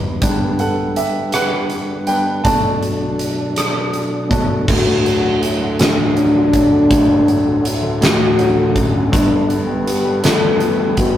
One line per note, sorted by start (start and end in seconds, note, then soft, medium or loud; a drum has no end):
0.00 0.20 E2 medium
0.00 0.20 E3 soft
0.00 0.20 E3 medium
0.00 0.20 G3 soft
0.00 2.41 G3 medium
0.00 0.20 B3 soft
0.00 2.41 B3 soft
0.00 0.25 E4 soft
0.00 0.25 B4 medium
0.21 2.43 G2 medium
0.21 2.43 D3 medium
0.21 0.72 G3 soft
0.21 0.72 B3 soft
0.21 0.72 D4 medium
0.21 kick medium
0.21 closed hi-hat medium
0.59 0.95 A4 medium
0.59 0.98 F#5 medium
0.59 closed hi-hat soft
0.96 1.32 G4 medium
0.96 1.35 E5 medium
0.96 closed hi-hat medium
1.32 2.05 B4 medium
1.32 2.10 F#5 medium
1.32 cross-stick loud
1.32 closed hi-hat medium
1.70 closed hi-hat soft
2.07 2.42 G3 soft
2.07 2.42 B3 soft
2.07 2.42 D4 soft
2.07 2.17 B4 medium
2.07 2.16 G5 medium
2.07 closed hi-hat medium
2.44 3.52 B2 soft
2.44 4.66 B2 medium
2.44 4.65 F#3 medium
2.44 3.53 A3 soft
2.44 4.66 D4 medium
2.44 3.53 D4 medium
2.44 4.65 A4 medium
2.44 4.27 D5 medium
2.44 4.26 A5 medium
2.44 kick loud
2.44 closed hi-hat medium
2.83 closed hi-hat soft
3.19 closed hi-hat medium
3.56 cross-stick loud
3.56 closed hi-hat medium
3.93 closed hi-hat soft
4.29 4.64 B2 soft
4.29 4.64 A3 soft
4.29 4.64 D4 soft
4.29 kick medium
4.29 closed hi-hat medium
4.67 6.87 D1 medium
4.67 9.09 D2 medium
4.67 6.87 D2 medium
4.67 9.09 D3 medium
4.67 5.38 F#4 medium
4.67 9.09 F#4 medium
4.67 11.17 A4 medium
4.67 kick medium
4.67 crash medium
4.87 5.78 A2 soft
5.06 5.42 F#3 medium
5.06 closed hi-hat soft
5.24 5.59 D3 medium
5.41 6.15 F#3 medium
5.41 5.79 E4 medium
5.41 closed hi-hat medium
5.60 6.33 D3 medium
5.79 7.98 A1 medium
5.79 5.96 A2 medium
5.79 7.61 D4 loud
5.79 snare loud
5.79 closed hi-hat medium
5.98 7.07 A2 soft
6.16 6.51 F#3 medium
6.16 closed hi-hat soft
6.34 6.70 D3 medium
6.53 7.25 F#3 medium
6.53 kick medium
6.53 closed hi-hat medium
6.72 7.44 D3 soft
6.90 9.09 D1 medium
6.90 9.09 D2 medium
6.90 kick loud
6.90 closed hi-hat medium
7.09 8.00 A2 soft
7.26 7.62 F#3 medium
7.26 closed hi-hat soft
7.45 7.80 D3 soft
7.64 8.36 F#3 medium
7.64 8.00 E4 medium
7.64 closed hi-hat medium
7.82 8.55 D3 medium
8.01 9.09 A1 medium
8.01 8.18 A2 medium
8.01 8.72 F#4 loud
8.01 snare loud
8.01 closed hi-hat medium
8.19 9.10 A2 medium
8.38 8.73 F#3 medium
8.38 closed hi-hat soft
8.57 8.92 D3 medium
8.75 9.11 F#3 medium
8.75 9.13 C#4 medium
8.75 kick medium
8.75 closed hi-hat medium
8.94 9.12 D3 soft
9.12 11.17 G1 medium
9.12 11.17 G2 medium
9.12 11.17 G3 medium
9.12 11.17 B3 medium
9.12 9.57 D4 loud
9.12 kick loud
9.12 closed hi-hat medium
9.30 10.22 D3 soft
9.48 9.85 B3 medium
9.48 closed hi-hat soft
9.67 10.03 G3 medium
9.86 10.59 B3 medium
9.86 10.22 G4 medium
9.86 closed hi-hat medium
10.05 10.78 G3 medium
10.23 11.17 D2 medium
10.23 10.40 D3 medium
10.23 10.94 A4 loud
10.23 snare loud
10.23 closed hi-hat medium
10.42 11.17 D3 medium
10.60 10.96 B3 medium
10.60 closed hi-hat soft
10.80 11.15 G3 soft
10.97 11.17 B3 medium
10.97 11.17 F#4 medium
10.97 kick medium
10.97 closed hi-hat medium